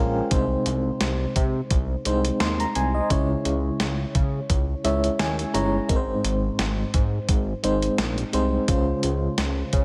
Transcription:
0.00 0.21 A#1 medium
0.00 0.31 G#3 medium
0.00 0.33 C#4 medium
0.00 0.33 F4 medium
0.00 0.22 A#4 medium
0.00 0.32 C5 medium
0.00 0.33 F5 medium
0.00 0.33 G5 medium
0.00 0.33 G#5 medium
0.31 0.56 C2 loud
0.31 1.32 C3 medium
0.31 1.27 G#3 medium
0.31 1.27 C4 medium
0.31 1.28 D#4 medium
0.31 1.28 C5 medium
0.31 kick medium
0.31 closed hi-hat medium
0.66 0.91 C2 loud
0.66 closed hi-hat medium
1.01 1.26 C2 medium
1.01 snare loud
1.01 closed hi-hat medium
1.36 1.61 C3 loud
1.36 kick medium
1.36 closed hi-hat medium
1.71 1.96 C2 loud
1.71 kick medium
1.71 closed hi-hat medium
2.05 2.31 C2 medium
2.05 2.54 G#3 medium
2.05 2.55 C4 medium
2.05 2.55 D#4 medium
2.05 2.55 C5 medium
2.05 closed hi-hat medium
2.25 closed hi-hat medium
2.40 2.66 D#2 medium
2.40 2.59 C6 medium
2.40 snare loud
2.40 closed hi-hat medium
2.60 2.75 A#5 medium
2.60 closed hi-hat soft
2.75 3.01 C2 medium
2.75 2.94 G#5 medium
2.75 closed hi-hat medium
2.94 3.28 D#5 medium
3.10 3.35 C#2 medium
3.10 4.11 C#3 medium
3.10 4.07 G#3 medium
3.10 4.07 C#4 medium
3.10 4.07 E4 medium
3.10 4.07 C#5 medium
3.10 kick medium
3.10 closed hi-hat medium
3.45 3.70 C#2 medium
3.45 closed hi-hat medium
3.80 4.05 C#2 medium
3.80 snare loud
3.80 closed hi-hat medium
4.15 4.40 C#3 medium
4.15 kick medium
4.15 closed hi-hat medium
4.50 4.75 C#2 medium
4.50 kick medium
4.50 closed hi-hat medium
4.84 5.10 C#2 medium
4.84 5.33 G#3 medium
4.84 5.34 C#4 medium
4.84 5.34 E4 medium
4.84 5.34 C#5 medium
4.84 5.17 E5 medium
4.84 closed hi-hat medium
5.04 closed hi-hat medium
5.19 5.45 D#2 medium
5.19 5.52 G#5 medium
5.19 snare loud
5.19 closed hi-hat medium
5.39 closed hi-hat soft
5.54 5.80 G1 medium
5.54 5.79 G#3 medium
5.54 5.79 C#4 medium
5.54 5.79 E4 medium
5.54 5.80 C#5 medium
5.54 5.87 A#5 medium
5.54 closed hi-hat medium
5.89 6.14 G#1 medium
5.89 6.90 G#2 medium
5.89 6.85 G#3 medium
5.89 6.85 C4 medium
5.89 6.85 D#4 medium
5.89 5.96 A#4 medium
5.89 kick medium
5.89 closed hi-hat medium
5.96 6.89 C5 medium
6.24 6.49 G#1 loud
6.24 closed hi-hat medium
6.59 6.84 G#1 loud
6.59 snare loud
6.59 closed hi-hat medium
6.94 7.19 G#2 medium
6.94 kick medium
6.94 closed hi-hat medium
7.29 7.54 G#1 loud
7.29 kick medium
7.29 closed hi-hat medium
7.63 7.89 G#1 medium
7.63 8.12 G#3 medium
7.63 8.13 C4 medium
7.63 8.13 D#4 medium
7.63 8.13 C5 medium
7.63 closed hi-hat medium
7.82 closed hi-hat medium
7.98 8.24 A#1 medium
7.98 snare loud
7.98 closed hi-hat medium
8.18 closed hi-hat soft
8.33 8.59 C2 medium
8.33 8.58 G#3 medium
8.33 8.58 C4 medium
8.33 8.58 D#4 medium
8.33 8.59 C5 medium
8.33 closed hi-hat medium
8.68 8.93 C#2 loud
8.68 9.69 C#3 medium
8.68 9.65 G#3 medium
8.68 9.65 C#4 medium
8.68 9.65 F4 medium
8.68 9.65 C5 medium
8.68 kick medium
8.68 closed hi-hat medium
9.03 9.29 C#2 medium
9.03 closed hi-hat medium
9.38 9.63 C#2 medium
9.38 snare loud
9.38 closed hi-hat medium
9.73 9.85 C#3 medium
9.73 kick medium
9.73 closed hi-hat medium

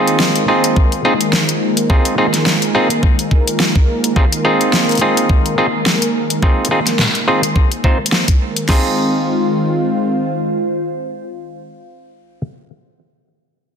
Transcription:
0.00 8.65 D#3 medium
0.00 8.65 G#3 medium
0.00 8.65 A#3 medium
0.00 0.45 C4 medium
0.00 0.45 D#4 medium
0.00 0.45 F4 medium
0.00 8.68 F4 medium
0.00 0.45 G#4 medium
0.00 8.68 A#4 medium
0.00 8.69 C5 loud
0.00 8.72 G#5 medium
0.07 closed hi-hat medium
0.20 snare loud
0.36 closed hi-hat soft
0.48 1.02 C4 medium
0.48 1.02 D#4 medium
0.48 1.02 F4 medium
0.48 1.02 G#4 medium
0.64 closed hi-hat medium
0.76 kick loud
0.92 closed hi-hat soft
1.05 1.13 C4 medium
1.05 1.13 D#4 medium
1.05 1.13 F4 medium
1.05 1.13 G#4 loud
1.21 closed hi-hat medium
1.33 snare loud
1.49 closed hi-hat soft
1.77 closed hi-hat medium
1.90 2.15 C4 medium
1.90 2.15 D#4 medium
1.90 2.15 F4 medium
1.90 2.15 G#4 medium
1.90 kick loud
2.05 closed hi-hat soft
2.18 2.27 C4 medium
2.18 2.27 D#4 medium
2.18 2.27 F4 medium
2.18 2.27 G#4 medium
2.34 snare soft
2.34 closed hi-hat medium
2.46 snare loud
2.62 closed hi-hat soft
2.75 2.88 C4 medium
2.75 2.88 D#4 medium
2.75 2.88 F4 medium
2.75 2.88 G#4 loud
2.90 closed hi-hat medium
3.03 kick medium
3.19 closed hi-hat soft
3.31 kick medium
3.47 closed hi-hat medium
3.60 snare loud
3.75 kick medium
4.04 closed hi-hat medium
4.16 4.25 C4 medium
4.16 4.25 D#4 medium
4.16 4.25 F4 medium
4.16 4.25 G#4 medium
4.16 kick loud
4.32 closed hi-hat soft
4.45 4.98 C4 medium
4.45 4.98 D#4 medium
4.45 4.98 F4 medium
4.45 4.98 G#4 loud
4.61 closed hi-hat medium
4.73 snare loud
4.89 closed hi-hat soft
4.91 closed hi-hat soft
4.95 closed hi-hat soft
4.97 closed hi-hat soft
4.99 5.55 C4 medium
4.99 5.55 D#4 medium
4.99 5.55 F4 medium
4.99 5.55 G#4 medium
4.99 closed hi-hat soft
5.17 closed hi-hat medium
5.29 kick medium
5.46 closed hi-hat soft
5.58 5.66 C4 medium
5.58 5.66 D#4 medium
5.58 5.66 F4 medium
5.58 5.66 G#4 medium
5.86 snare loud
6.02 closed hi-hat soft
6.30 closed hi-hat medium
6.43 6.68 C4 medium
6.43 6.68 D#4 medium
6.43 6.68 F4 medium
6.43 6.68 G#4 medium
6.43 kick loud
6.65 closed hi-hat soft
6.71 6.79 C4 medium
6.71 6.79 D#4 medium
6.71 6.79 F4 medium
6.71 6.79 G#4 medium
6.87 snare soft
6.87 closed hi-hat medium
6.99 snare loud
7.15 closed hi-hat soft
7.28 7.41 C4 medium
7.28 7.41 D#4 medium
7.28 7.41 F4 medium
7.28 7.41 G#4 medium
7.43 closed hi-hat medium
7.56 kick medium
7.72 closed hi-hat soft
7.84 7.98 C4 medium
7.84 7.98 D#4 medium
7.84 7.98 F4 medium
7.84 7.98 C5 medium
7.84 kick medium
8.06 closed hi-hat medium
8.12 snare loud
8.28 kick medium
8.28 closed hi-hat soft
8.56 closed hi-hat medium
8.68 11.71 D#3 medium
8.68 11.71 G#3 medium
8.68 11.71 C4 medium
8.68 12.41 C4 medium
8.68 12.41 D#4 medium
8.68 11.71 F4 medium
8.68 12.41 F4 medium
8.68 12.41 G#4 medium
8.68 kick medium
8.68 snare medium
8.68 crash medium
8.78 11.71 C5 medium
8.86 11.71 F5 medium

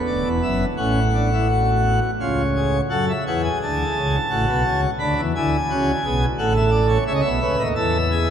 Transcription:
0.00 0.66 B3 medium
0.06 0.22 D1 medium
0.06 0.22 D2 medium
0.06 0.29 D5 medium
0.24 0.39 E1 medium
0.24 0.39 E2 medium
0.42 0.65 F#1 medium
0.42 0.64 F#2 medium
0.42 0.65 E5 medium
0.77 2.00 A1 medium
0.77 2.00 A2 medium
0.77 0.99 C#4 medium
0.77 1.99 F#5 medium
1.14 1.29 D4 medium
1.33 1.47 E4 medium
1.50 2.10 F#4 medium
2.20 2.81 C#2 medium
2.20 2.81 C#3 medium
2.20 2.42 F4 medium
2.20 2.81 C#5 medium
2.56 2.78 G#4 medium
2.90 3.12 F#2 medium
2.90 3.12 F#3 medium
2.90 3.12 A4 medium
2.90 3.05 F#5 medium
3.09 3.24 E5 medium
3.26 3.48 E2 medium
3.26 3.48 E3 medium
3.26 4.16 G#4 medium
3.26 3.41 F#5 medium
3.44 3.59 G#5 medium
3.62 3.84 D2 medium
3.62 3.83 D3 medium
3.62 4.81 A5 medium
3.96 4.18 C#2 medium
3.96 4.18 C#3 medium
4.30 4.45 A1 medium
4.30 4.45 A2 medium
4.30 4.90 F#4 medium
4.48 4.63 B1 medium
4.48 4.63 B2 medium
4.65 4.87 C#2 medium
4.65 4.86 C#3 medium
4.99 5.14 D2 medium
4.99 5.14 D3 medium
4.99 5.21 D4 medium
4.99 5.21 B5 medium
5.18 5.32 E2 medium
5.18 5.33 E3 medium
5.36 5.56 D2 loud
5.36 5.57 D3 medium
5.36 5.56 E4 medium
5.36 6.24 G#5 medium
5.70 5.91 C#2 medium
5.70 5.91 C#3 medium
5.70 5.91 F#4 medium
6.04 6.25 B1 medium
6.04 6.26 B2 medium
6.04 6.26 G#4 medium
6.38 6.98 A1 medium
6.38 6.97 A2 medium
6.38 6.98 A4 medium
6.38 6.53 F#5 medium
6.55 6.70 E5 medium
6.72 6.87 D5 medium
6.89 7.04 C#5 medium
7.07 7.22 C#2 medium
7.07 7.22 C#3 medium
7.07 7.29 C#5 loud
7.07 7.13 E5 medium
7.14 7.21 D#5 medium
7.21 7.39 B1 medium
7.21 7.39 B2 medium
7.21 7.68 E5 medium
7.40 7.56 C#2 medium
7.40 7.56 C#3 medium
7.40 7.62 B4 loud
7.59 7.74 D#2 medium
7.59 7.73 D#3 medium
7.75 8.30 E2 medium
7.75 8.30 E3 medium
7.75 7.97 A4 loud
7.75 8.30 E5 medium
8.11 8.30 G#4 loud

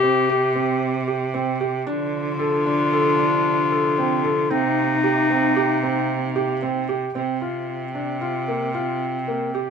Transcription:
0.00 1.89 C3 medium
0.00 0.23 C4 medium
0.00 1.60 G4 loud
0.29 0.50 G4 medium
0.55 0.96 C4 medium
1.08 1.28 G4 medium
1.34 1.55 C4 medium
1.61 1.81 G4 medium
1.86 4.48 C3 medium
1.86 4.53 D3 medium
1.86 4.48 F3 medium
1.86 4.48 D4 medium
1.86 2.28 D4 medium
1.86 4.52 F4 loud
2.39 2.60 A4 medium
2.66 2.87 D4 medium
2.93 3.13 A4 medium
3.19 3.60 D4 medium
3.72 3.92 A4 medium
3.98 4.19 C4 medium
4.24 4.45 A4 medium
4.50 7.12 C3 medium
4.50 7.11 C3 medium
4.50 7.12 A#3 medium
4.50 4.92 C4 medium
4.50 7.12 D#4 medium
4.50 6.89 D#4 loud
5.04 5.24 G4 medium
5.30 5.51 C4 medium
5.56 5.77 G4 medium
5.83 6.24 C4 medium
6.36 6.56 G4 medium
6.62 6.83 C4 medium
6.89 7.09 G4 medium
7.15 9.70 C3 medium
7.15 7.36 C4 medium
7.15 9.70 C4 medium
7.41 7.83 F4 medium
7.95 8.15 D4 medium
8.21 8.42 F4 medium
8.48 8.69 A#3 medium
8.74 9.15 F4 medium
9.28 9.48 A#3 medium
9.54 9.70 G4 medium

